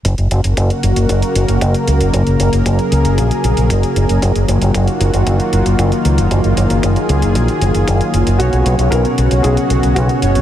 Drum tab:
HH |xxxxxxxxxxxxxxxx|xxxxxxxxxxxxxxxx|xxxxxxxxxxxxxxxx|xxxxxxxxxxxxxxxx|
BD |o---o---o---o---|o---o---o---o---|o---o---o---o---|o---o---o---o---|

HH |xxxxxxxxxxxxxxxx|
BD |o---o---o---o---|